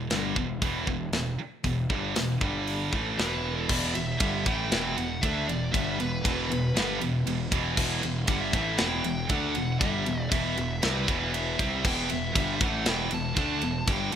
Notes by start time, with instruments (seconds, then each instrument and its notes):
0.10 picked electric bass G1, distorted electric guitar G2 D3 G3, snare, open hi-hat
0.36 picked electric bass E1, distorted electric guitar E2 B2, kick
0.62 picked electric bass E1, distorted electric guitar E2 B2 E3, kick, open hi-hat
0.87 picked electric bass E1, distorted electric guitar E2 B2, kick
1.12 picked electric bass E1, distorted electric guitar E2 B2, snare, open hi-hat
1.39 muted picked electric bass stroke, muted distorted electric guitar stroke
1.64 picked electric bass E1, distorted electric guitar E2 B2, kick, open hi-hat
1.89 picked electric bass G1, distorted electric guitar G2 D3 G3, kick
2.16 picked electric bass E1, distorted electric guitar E2 B2, snare, open hi-hat
2.41 picked electric bass G1, distorted electric guitar G2 D3 G3, kick
2.67 open hi-hat
2.93 picked electric bass A1, distorted electric guitar A2 E3 A3, kick
3.18 picked electric bass E1, distorted electric guitar E2 B2 E3, lead electric guitar B4, snare, open hi-hat
3.60 lead electric guitar A4
3.68 picked electric bass E1, distorted electric guitar E2 B2 E3, lead electric guitar D5, kick, crash
3.94 picked electric bass E1, distorted electric guitar E2 B2, lead electric guitar E5, ride
4.20 picked electric bass G1, distorted electric guitar G2 D3 G3, kick, ride
4.46 picked electric bass A1, distorted electric guitar A2 E3 A3, lead electric guitar G5, kick, ride
4.71 picked electric bass E1, distorted electric guitar E2 B2 E3, snare, ride
4.97 picked electric bass E1, distorted electric guitar E2 B2, lead electric guitar F#5, ride
5.22 picked electric bass D2, distorted electric guitar D3 A3 D4, lead electric guitar E5, kick, ride
5.47 picked electric bass E1, distorted electric guitar E2 B2, lead electric guitar D5, ride
5.72 picked electric bass G1, distorted electric guitar G2 D3 G3, lead electric guitar E5, kick, ride
5.97 picked electric bass E1, distorted electric guitar E2 B2, lead electric guitar B4, ride
6.21 picked electric bass E1, distorted electric guitar E2 B2 E3, kick
6.26 ride
6.49 picked electric bass E1, distorted electric guitar E2 B2, ride
6.74 picked electric bass G1, distorted electric guitar G2 D3 G3, snare, ride
7.00 picked electric bass E1, distorted electric guitar E2 B2, ride
7.25 picked electric bass E1, distorted electric guitar E2 B2, ride
7.50 picked electric bass E1, distorted electric guitar E2 B2 E3, kick, ride
7.76 picked electric bass E1, distorted electric guitar E2 B2 E3, kick, crash
8.03 picked electric bass E1, distorted electric guitar E2 B2, ride
8.27 picked electric bass G1, distorted electric guitar G2 D3 G3, lead electric guitar F#5, kick, ride
8.40 lead electric guitar E5
8.53 picked electric bass A1, distorted electric guitar A2 E3 A3, kick, ride
8.78 picked electric bass E1, distorted electric guitar E2 B2 E3, lead electric guitar G5, snare, ride
9.04 picked electric bass E1, distorted electric guitar E2 B2, ride
9.29 picked electric bass D2, distorted electric guitar D3 A3 D4, lead electric guitar F#5, kick, ride
9.55 picked electric bass E1, distorted electric guitar E2 B2, ride
9.80 picked electric bass G1, distorted electric guitar G2 D3 G3, lead electric guitar E5, kick, ride
10.06 picked electric bass E1, distorted electric guitar E2 B2, ride
10.31 picked electric bass E1, distorted electric guitar E2 B2 E3, lead electric guitar E5, kick, ride
10.57 picked electric bass E1, distorted electric guitar E2 B2, ride
10.82 picked electric bass C2, distorted electric guitar C3 G3 C4, lead electric guitar B4, snare, ride
11.08 picked electric bass E1, distorted electric guitar E2 B2 E3, kick, ride
11.34 lead electric guitar E5, ride
11.59 picked electric bass C2, distorted electric guitar C3 G3 C4, kick, ride
11.84 picked electric bass E1, distorted electric guitar E2 B2 E3, lead electric guitar G5, kick, crash
12.09 picked electric bass E1, distorted electric guitar E2 B2, lead electric guitar E5, ride
12.34 picked electric bass G1, distorted electric guitar G2 D3 G3, kick, ride
12.60 picked electric bass A1, distorted electric guitar A2 E3 A3, lead electric guitar F#5, kick, ride
12.86 picked electric bass E1, distorted electric guitar E2 B2 E3, lead electric guitar G5, snare, ride
13.11 picked electric bass E1, distorted electric guitar E2 B2, lead electric guitar A5, ride
13.36 picked electric bass D2, distorted electric guitar D3 A3 D4, kick, ride
13.62 picked electric bass E1, distorted electric guitar E2 B2, ride
13.87 picked electric bass G1, distorted electric guitar G2 D3 G3, lead electric guitar G5, kick, ride
14.12 distorted electric guitar E2 B2, ride